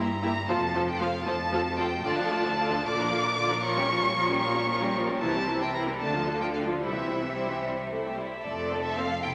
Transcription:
Already playing: double bass section G1, cello section G2, violin section A#5
0.22 viola section A#3 E4, violin section G4 E5 A#5
0.49 double bass section F1, cello section F2, viola section F3 F4, violin section A4 C5 A5
0.75 viola section F3 F4, violin section A4 C5
0.90 violin section G5
1.01 viola section F3 F4, violin section A4 C5 F5
1.27 double bass section F1, cello section F2, viola section F3 F4, violin section A4 C5 A5
1.53 viola section F3 F4, violin section A4 C5
1.79 viola section F3 F4, violin section A4 C5 G5
2.05 cello section D2, double bass section D2, viola section D3 F4, violin section F4 D5 A5
2.18 viola section F3 D4, violin section A4 F5
2.31 viola section D3 F4, violin section F4 D5
2.45 viola section F3 D4, violin section A4 F5
2.58 viola section D3 F4, violin section F4 D5
2.72 viola section F3 D4, violin section A4 F5
2.85 double bass section A#1, cello section A#2, viola section D3 F4, violin section D5 F5 D6
2.99 viola section F3 D4, violin section A#4 D5
3.11 viola section D3 F4, violin section D5 F5
3.24 viola section F3 D4, violin section A#4 D5
3.37 viola section D3 F4, violin section D5 F5
3.49 viola section F3 D4, violin section A#4 D5
3.63 viola section F3 F4, violin section A#4 C#5 C#6
3.76 viola section G3 C#4, violin section G4 A#4
3.90 viola section F3 F4, violin section A#4 C#5
4.03 viola section G3 C#4, violin section G4 A#4
4.15 viola section F3 F4, violin section A#4 C#5
4.29 viola section G3 C#4, violin section G4 A#4
4.42 viola section F3 F4, violin section A#4 C#5 C#6
4.56 viola section G3 C#4, violin section G4 A#4
4.69 viola section F3 F4, violin section A#4 C#5
4.82 viola section G3 C#4, violin section G4 A#4
4.95 viola section F3 F4, violin section A#4 C#5
5.07 viola section G3 C#4, violin section G4 A#4
5.21 double bass section C2, cello section C3, viola section E3 E4, violin section A#4 C5 A5
5.35 viola section G3 C4, violin section G4 A#4
5.47 viola section E3 E4, violin section A#4 C5
5.61 viola section G3 C4, violin section G4 A#4 G5
5.74 viola section E3 E4, violin section A#4 C5 A#5
5.88 viola section G3 C4, violin section G4 A#4
6.00 double bass section D2, cello section D3, viola section A3 D4, violin section F4 A4 A5
6.14 viola section F3 F4, violin section D4 F4
6.28 viola section A3 D4, violin section F4 A4
6.41 viola section F3 F4, violin section D4 F4 G5
6.54 viola section A3 D4, violin section F4 A4 F5
6.68 viola section F3 F4, violin section D4 F4
6.81 double bass section C2, cello section C3, viola section G3 E4, violin section E4 C5 E5
6.94 viola section E3 C4, violin section G4 E5
7.08 viola section G3 E4, violin section E4 C5
7.22 viola section E3 C4, violin section G4 E5
7.35 viola section G3 E4, violin section E4 C5
7.49 viola section E3 C4, violin section G4 E5
7.63 viola section G3, violin section E4 C5
7.77 violin section G4 E5
7.90 viola section A3, violin section E4 C5
8.05 violin section G4 E5
8.17 viola section G3, violin section E4 C5
8.31 violin section G4 E5
8.43 double bass section F1, cello section F2, violin section A4 D5
8.71 viola section C4 A4
8.85 violin section E5
8.96 viola section C4 A4, violin section F5
9.22 double bass section C2, cello section C3, violin section E4 G5

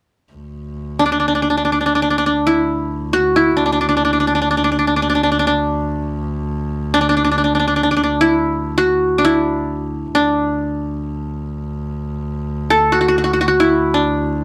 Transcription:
0.32 double bass D2
0.99 qanun D4
1.06 qanun D4
1.12 qanun D4
1.20 qanun D4
1.28 qanun D4
1.35 qanun D4
1.42 qanun D4
1.50 qanun D4
1.57 qanun D4
1.65 qanun D4
1.72 qanun D4
1.81 qanun D4
1.86 qanun D4
1.95 qanun D4
2.02 qanun D4
2.10 qanun D4
2.18 qanun D4
2.26 qanun D4
2.47 qanun E4
3.13 qanun F#4
3.36 qanun E4
3.57 qanun D4
3.66 qanun D4
3.72 qanun D4
3.81 qanun D4
3.89 qanun D4
3.97 qanun D4
4.05 qanun D4
4.13 qanun D4
4.20 qanun D4
4.27 qanun D4
4.35 qanun D4
4.42 qanun D4
4.51 qanun D4
4.57 qanun D4
4.64 qanun D4
4.72 qanun D4
4.79 qanun D4
4.87 qanun D4
4.96 qanun D4
5.02 qanun D4
5.10 qanun D4
5.15 qanun D4
5.23 qanun D4
5.32 qanun D4
5.39 qanun D4
5.47 qanun D4
6.94 qanun D4
7.01 qanun D4
7.09 qanun D4
7.17 qanun D4
7.24 qanun D4
7.31 qanun D4
7.38 qanun D4
7.44 qanun D4
7.55 qanun D4
7.60 qanun D4
7.68 qanun D4
7.76 qanun D4
7.83 qanun D4
7.91 qanun D4
7.97 qanun D4
8.03 qanun D4
8.21 qanun E4
8.78 qanun F#4
9.18 qanun D4
9.25 qanun E4
10.15 double bass D2, qanun D4
12.70 qanun A4
12.92 qanun F#4
13.01 qanun F#4
13.08 qanun F#4
13.18 qanun F#4
13.24 qanun F#4
13.33 qanun F#4
13.41 qanun F#4
13.48 qanun F#4
13.60 qanun E4
13.94 qanun D4

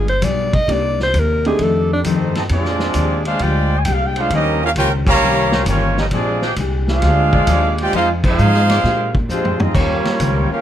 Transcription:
Already playing: upright bass G1, steel-string acoustic guitar F4 G#4
0.08 alto saxophone C5, ride
0.21 upright bass B1, steel-string acoustic guitar G3 B3 F4 G#4, alto saxophone D5, kick, hi-hat pedal, ride
0.53 alto saxophone D#5, kick, ride
0.67 upright bass C2, steel-string acoustic guitar C3 A#3 D#4 G4, upright piano A#3 C4 D4 D#4 G4, kick, ride
0.71 alto saxophone D5
1.00 alto saxophone C5, snare
1.13 upright bass D#2, steel-string acoustic guitar C3 A#3 D#4 G4, kick, hi-hat pedal, ride
1.19 alto saxophone A#4
1.45 upright piano A3 C4 D4 D#4 G4, alto saxophone G#4, ride
1.59 upright bass F2, steel-string acoustic guitar F2 D#3 A3, alto saxophone A4, kick, ride
1.63 steel-string acoustic guitar D4
1.93 alto saxophone D4
2.02 steel-string acoustic guitar F2 D#3, upright bass G2, trombone section D#3 A3 C4, trumpet section A3 D#4 G4 A#4 C5, kick, hi-hat pedal, ride
2.07 steel-string acoustic guitar A3 D4
2.35 trombone section A3 C4 D#4, trumpet section C4 G4 A4 D#5, snare, ride
2.49 upright bass F2, steel-string acoustic guitar A#2 G#3 D4 G4, trombone section F3 G#3 D4, trumpet section C4 F4 G#4 D5, kick, ride
2.65 snare
2.80 snare
2.94 upright bass D#2, steel-string acoustic guitar A#2 G#3 D4 G4, kick, hi-hat pedal, ride
3.25 trombone section G#3 D4 F4, trumpet section D4 G#4 C5 F5, ride
3.39 upright bass D2, steel-string acoustic guitar A#2, trombone section G#3 D4 G4, trumpet section F4 C5 D5 G5, kick, ride
3.43 steel-string acoustic guitar G#3 D4 G4
3.78 trumpet section G#5
3.84 upright bass C2, steel-string acoustic guitar A#2 G#3 D4 G4, trumpet section G5, kick, hi-hat pedal, ride
3.93 trumpet section F5
4.06 trumpet section G5
4.16 saxophone section G3 C#4 F4 C5, trombone section G#3 D4 F4, trumpet section D4 G#4 C5 F5, ride
4.30 upright bass D#2, steel-string acoustic guitar D#3 C#4, trombone section G3 A#3 D#4, trumpet section C#4 G4 A#4 D#5, kick, ride
4.35 steel-string acoustic guitar G4 C5
4.61 trombone section A#3 C#4 F4, trumpet section C#4 G4 F5
4.65 trumpet section A#4
4.76 upright bass C#2, steel-string acoustic guitar D#3 C#4, trombone section A#3 C#4 G4, trumpet section F4 A#4 C#5 G5, kick, hi-hat pedal, ride
4.80 steel-string acoustic guitar G4 C5
5.07 trombone section G3 A#3 C#4, trumpet section G4 C#5 F5 A#5, kick, crash
5.21 upright bass C2, steel-string acoustic guitar D#3 C#4 G4
5.25 steel-string acoustic guitar C5
5.52 saxophone section G3 C#4 F4 C5, snare
5.66 upright bass G1, steel-string acoustic guitar D#3 C#4 G4, trombone section G3 A#3 C#4, trumpet section A#3 F4 G4 C#5, kick, hi-hat pedal, ride
5.70 steel-string acoustic guitar C5
5.97 trombone section G3 A#3 D#4, trumpet section C#4 G4 A#4 D#5, snare
6.11 upright bass A#1, steel-string acoustic guitar A#2 G#3, trombone section F3 G#3 D4, trumpet section C4 F4 G#4 D5, kick, ride
6.15 steel-string acoustic guitar D4 G4
6.42 saxophone section G#3 D4 G4 C5, snare
6.56 upright bass C2, steel-string acoustic guitar A#2 G#3 D4 G4, kick, hi-hat pedal, ride
6.88 trombone section G#3 D4 F4, trumpet section D4 G#4 C5 F5, snare
7.02 upright bass D2, steel-string acoustic guitar A#2 G#3 D4 G4, kick, snare, ride
7.32 saxophone section G#3 D4 G#4 D5, kick
7.47 upright bass D#2, steel-string acoustic guitar A#2 G#3 D4 G4, kick, hi-hat pedal, ride
7.78 trombone section G#3 D4 G4, trumpet section F4 D5 G5, ride
7.83 trumpet section C5
7.93 upright bass F2, steel-string acoustic guitar F3 C4 D#4, trombone section C4, trumpet section D#4 G#4 C5 F5, kick, ride
7.97 trombone section G#3 F4, steel-string acoustic guitar G#4
8.23 saxophone section G#3 D#4 F4 C5, kick, crash
8.27 trombone section G#3 C4 F4, trumpet section D#4 G#4 C5 F5
8.38 upright bass G#2, steel-string acoustic guitar F3 C4 D#4 G#4, hi-hat pedal
8.54 snare
8.69 saxophone section G#3 D4 G4 D5, snare, ride
8.84 steel-string acoustic guitar A#2 G#3 D4 G4, upright bass A#2, kick, snare
9.15 kick
9.29 upright bass F2, steel-string acoustic guitar A#2 G#3 D4 G4, trombone section F3 G#3 C4, trumpet section G#3 D4 F4 C5, hi-hat pedal
9.45 floor tom
9.60 trumpet section C4 F4 G#4 D#5, trombone section D#4, floor tom
9.74 upright bass D#2, steel-string acoustic guitar D#3 C#4 G4, saxophone section G3 C#4 F4 C#5, trombone section G3 A#3 C#4, trumpet section A#3 F4 G4 C#5, kick, crash
9.78 steel-string acoustic guitar C5
10.05 muted upright bass stroke, snare, ride
10.20 upright bass C#2, steel-string acoustic guitar D#3 C#4 G4 C5, kick, hi-hat pedal, ride
10.51 trombone section A#3 C#4 F4, trumpet section C#4 G4 A#4 F5

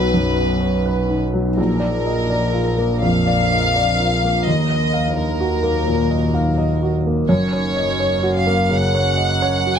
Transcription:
Already playing: grand piano B1 F#3 D#4 B4 C#5, double bass B1, ambient pad F#3 D#4 F#4, violin section B4
0.14 grand piano F#2
0.37 grand piano B4
0.60 grand piano C#5
0.86 grand piano B4
1.10 grand piano D#4
1.34 grand piano F#3
1.57 grand piano A#1, double bass A#1, ambient pad F3 D4 A#4, violin section A#4
1.80 grand piano D5
2.06 grand piano D#5
2.30 grand piano D5
2.54 grand piano F4
2.77 grand piano A#3
3.02 grand piano F2, violin section F5
3.27 grand piano D5
3.52 grand piano D#5
3.76 grand piano D5
4.00 grand piano F4
4.24 grand piano A#3
4.46 double bass D#2, grand piano D#2, ambient pad F#3 D#4, violin section D#5
4.70 grand piano D#5
4.94 grand piano F5
5.17 violin section A#4, grand piano D#5
5.40 grand piano F#4
5.63 grand piano A#3
5.87 grand piano A#2
6.10 grand piano D#5
6.34 grand piano F5
6.58 grand piano D#5
6.83 grand piano F#4
7.07 grand piano A#3
7.28 double bass F#1, grand piano F#2, ambient pad C#4 A#4, violin section C#5
7.53 grand piano C#5
7.76 grand piano D#5
8.00 grand piano C#5
8.23 grand piano F#4
8.35 violin section F5
8.47 grand piano A#3
8.71 grand piano C#3, violin section F#5
8.95 grand piano C#5
9.17 grand piano D#5
9.42 grand piano C#5
9.67 grand piano F#4

